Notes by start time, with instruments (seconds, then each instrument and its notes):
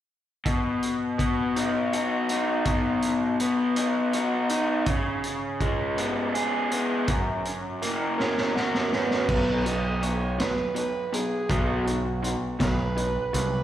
0.46 overdriven electric guitar B2, kick, closed hi-hat
0.83 closed hi-hat
1.19 overdriven electric guitar B3, kick, closed hi-hat
1.56 overdriven electric guitar D#4, closed hi-hat
1.93 overdriven electric guitar F#4, closed hi-hat
2.29 overdriven electric guitar D#4, closed hi-hat
2.65 overdriven electric guitar B2, kick, closed hi-hat
3.02 closed hi-hat
3.40 overdriven electric guitar B3, closed hi-hat
3.76 overdriven electric guitar D#4, closed hi-hat
4.13 overdriven electric guitar F#4, closed hi-hat
4.49 overdriven electric guitar D#4, closed hi-hat
4.86 overdriven electric guitar C#3, kick, closed hi-hat
5.24 closed hi-hat
5.60 overdriven electric guitar G#3, kick, closed hi-hat
5.97 overdriven electric guitar B3, closed hi-hat
6.34 overdriven electric guitar G#4, closed hi-hat
6.71 overdriven electric guitar B3, closed hi-hat
7.08 overdriven electric guitar F#2, kick, closed hi-hat
7.45 closed hi-hat
7.82 overdriven electric guitar A#3, closed hi-hat
8.18 overdriven electric guitar C#4, analog synth lead A#4, snare
8.37 snare
8.56 overdriven electric guitar F#4, snare
8.74 snare
8.92 overdriven electric guitar C#4, analog synth lead B4, snare
9.11 snare
9.29 picked electric bass B1, overdriven electric guitar B2 F#3 B3, kick, crash
9.65 overdriven electric guitar B2 F#3, analog synth lead D#5, closed hi-hat
10.02 overdriven electric guitar B2 F#3, analog synth lead C#5, closed hi-hat
10.39 overdriven electric guitar B2 F#3, analog synth lead B4, snare, closed hi-hat
10.75 overdriven electric guitar B2 F#3, analog synth lead B4, closed hi-hat
11.13 overdriven electric guitar B2 F#3, analog synth lead G#4, closed hi-hat
11.49 picked electric bass B1, overdriven electric guitar B2 F#3 B3, analog synth lead F#4, kick, closed hi-hat
11.87 overdriven electric guitar B2 F#3, closed hi-hat
12.23 overdriven electric guitar B2 F#3, closed hi-hat
12.59 picked electric bass B1, overdriven electric guitar B2 F#3, analog synth lead B4, kick, snare, closed hi-hat
12.96 overdriven electric guitar B2 F#3, closed hi-hat
13.33 picked electric bass C2, overdriven electric guitar B2 F#3, analog synth lead B4, closed hi-hat